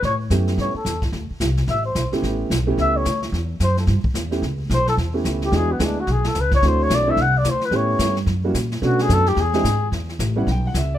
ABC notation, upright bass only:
X:1
M:4/4
L:1/8
Q:"Swing" 1/4=218
K:Amix
V:1 name="Upright bass" clef=bass
A,,2 F,,2 G,, z E,,2 | D,, z =C,,2 A,,,2 B,,, z | A,,,2 B,,,2 C,,2 D,,2 | E,,2 F,,2 G,, z E,,2 |
C,,2 B,,,2 E,,2 C,,2 | E,,2 D,,2 B,,,2 C,,2 | D,,2 B,,,2 =C,,2 D,,2 | A,,2 G,,2 F,,2 ^A,,2 |
B,,2 F,,2 E,,2 ^G,,2 | E,,2 A,,,2 B,,,2 C,,2 |]